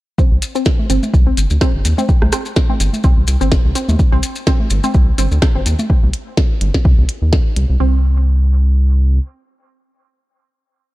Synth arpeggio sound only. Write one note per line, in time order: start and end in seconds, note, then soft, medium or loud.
0.18 0.21 C4 medium
0.55 0.59 C4 medium
0.90 0.93 C4 medium
1.27 1.31 C4 medium
1.61 1.64 C4 medium
1.98 2.02 C4 medium
2.33 2.36 C4 medium
2.70 2.74 C4 medium
3.04 3.07 C4 medium
3.41 3.45 C4 medium
3.75 3.78 C4 medium
4.12 4.16 C4 medium
4.47 4.50 C4 medium
4.84 4.88 C4 medium
5.18 5.21 C4 medium
5.55 5.59 C4 medium
7.80 8.02 C4 medium